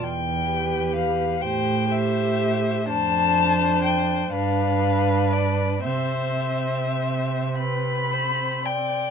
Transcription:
<<
  \new Staff \with { instrumentName = "Violin" } { \time 6/8 \key c \major \tempo 4. = 40 g''4 f''8 g''8 e''4 | a''4 g''8 f''4 d''8 | e''4. b''4 g''8 | }
  \new Staff \with { instrumentName = "Violin" } { \time 6/8 \key c \major r8 b'4 c''8 c''4 | c''4. b'4. | c''4. b'8 c''8 d''8 | }
  \new Staff \with { instrumentName = "Viola" } { \time 6/8 \key c \major r8 g'4 g'8 g'4 | d'4. d'4. | c'2. | }
  \new Staff \with { instrumentName = "Cello" } { \clef bass \time 6/8 \key c \major e,4. a,4. | f,4. g,4. | c2. | }
>>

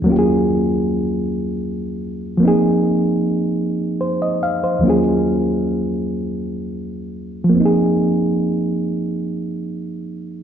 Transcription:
\new Staff \with { instrumentName = "Reed electric piano" } { \time 6/8 \key aes \mixolydian \tempo 4. = 48 << { r2. | r2 c''16 ees''16 f''16 c''16~ | c''16 r2 r8. | r2. | } \\ { <ees, ges bes des' f' g' aes'>2. | <f bes c' ees' aes'>2. | <ees, f ges bes des' f' aes'>2. | <f bes c' ees' aes'>2. | } >> }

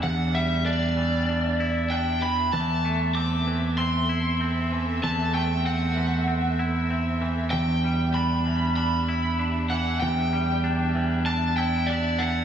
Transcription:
<<
  \new Staff \with { instrumentName = "Lead electric guitar" } { \time 4/4 \key e \minor \tempo 4 = 96 fis''8 e''8 d''2 g''8 b''8 | a''4 d'''4 c'''2 | a''8 g''8 fis''2 r4 | g''4 b''4 b''4. fis''8 |
g''2 a''8 g''8 d''8 fis''8 | }
  \new Staff \with { instrumentName = "String section" } { \time 4/4 \key e \minor << { e''1~ | e''1~ | e''1~ | e''1~ |
e''1 | } \\ { <d' g'>1 | <c' a'>1~ | <c' a'>1 | <d' g'>1~ |
<d' g'>1 | } >> }
  \new Staff \with { instrumentName = "Clean electric guitar" } { \time 4/4 \key e \minor <e, e d' e'>8 g8 d'8 e8 d'8 e'8 d'8 e8 | e8 a8 c'8 e8 c'8 e'8 c'8 e8 | e8 a8 c'8 e8 c'8 e'8 c'8 e8 | e,8 g8 d'8 e8 d'8 e'8 d'8 e8 |
e,8 g8 d'8 e8 d'8 e'8 d'8 e8 | }
  \new Staff \with { instrumentName = "Picked electric bass" } { \clef bass \time 4/4 \key e \minor e,1 | e,1 | e,1 | e,1 |
e,1 | }
>>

